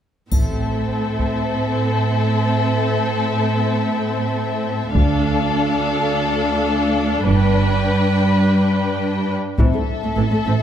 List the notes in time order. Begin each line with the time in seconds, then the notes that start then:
0.31 A1 A2 C4 A4 E5, taiko, triangle
1.19 taiko
4.95 D2 D4 A4 F5, taiko
7.26 G1 G2 B4 G5
9.58 A1 A2 E3 C4 E4 A4 E5, taiko
9.74 A2 A3
10.03 A2 A3
10.17 A1 A2 E3
10.32 A2 A3
10.47 A1 A2 C4